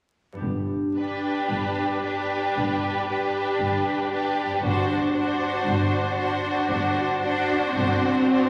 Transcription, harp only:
0.33 4.23 G2 soft
0.33 4.25 B3 soft
0.33 4.26 D4 soft
0.38 4.28 G4 soft
4.45 8.35 G2 soft
4.50 8.40 C4 soft
4.55 8.45 D4 soft
4.59 8.49 F#4 soft

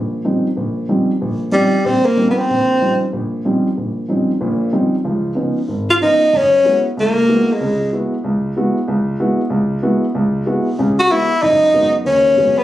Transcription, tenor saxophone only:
1.53 1.87 G3 medium
1.86 2.07 C4 medium
2.06 2.29 A#3 medium
2.31 2.39 B3 medium
2.38 3.02 C4 medium
5.90 5.95 F4 medium
6.02 6.38 D#4 medium
6.36 6.86 C#4 loud
7.00 7.54 A#3 medium
7.53 7.94 G#3 medium
10.99 11.13 F#4 medium
11.11 11.44 E4 medium
11.43 11.94 D#4 loud
12.06 12.59 C#4 medium
12.58 12.64 B3 medium

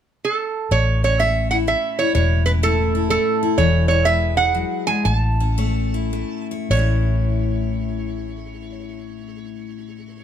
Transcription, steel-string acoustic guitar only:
0.71 2.14 A2 medium
1.04 2.13 C#4 soft
1.19 1.66 A3 medium
1.19 2.13 C#5 medium
1.51 1.99 E4 medium
1.67 2.13 A3 medium
2.00 2.63 E4 medium
2.15 3.58 A2 medium
2.47 3.57 C#4 medium
2.63 3.10 A3 medium
2.63 2.94 E4 medium
2.95 3.42 E4 medium
3.11 3.56 A3 medium
3.43 3.91 E4 medium
3.58 4.54 E3 medium
3.91 5.40 E4 medium
4.06 4.87 G#3 medium
4.06 5.04 B4 medium
4.38 5.04 G#4 medium
4.55 4.88 F#3 medium
4.88 5.06 G#3 medium
5.06 6.70 A2 medium
5.40 6.69 C#4 medium
5.58 6.12 A3 medium
5.58 6.50 C#5 medium
5.94 6.76 E4 medium
6.13 6.68 A3 medium
6.51 6.69 C#5 medium
6.71 10.24 A2 medium
6.71 10.24 A3 medium
6.71 10.24 C#4 soft
6.77 10.24 E4 soft
6.77 10.24 C#5 medium

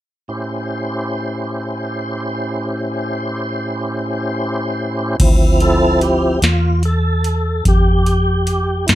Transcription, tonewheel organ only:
0.28 5.16 A2 soft
0.28 5.16 C#4 medium
0.28 5.16 E4 medium
0.28 5.16 G4 medium
0.28 5.17 C5 soft
5.20 6.39 F3 medium
5.20 6.39 C4 soft
5.20 6.39 E4 medium
5.62 6.01 A4 medium
6.02 6.42 G4 medium
6.43 6.83 F4 medium
6.85 7.64 A4 medium
7.68 8.86 G4 medium
8.87 8.91 E4 medium

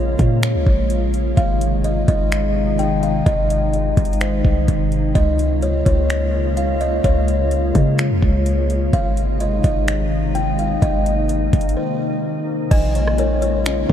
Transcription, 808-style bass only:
0.00 0.16 A#1 loud
0.19 0.56 A#2 loud
0.55 0.66 C#2 loud
0.67 1.35 A#1 loud
1.37 2.05 G#1 loud
2.08 3.22 G#1 loud
3.26 3.94 G#1 loud
3.97 4.43 G#1 loud
4.45 4.67 C2 loud
4.68 5.14 G#1 loud
5.15 5.83 C#2 loud
5.86 7.00 C#2 loud
7.04 7.72 C#2 loud
7.75 8.12 C#3 loud
8.10 8.22 F2 loud
8.22 8.90 C#2 loud
8.93 9.61 G#1 loud
9.64 10.78 G#1 loud
10.82 11.50 G#1 loud
11.53 11.76 G#1 loud
12.71 13.85 A#1 loud
13.90 13.93 A#2 loud

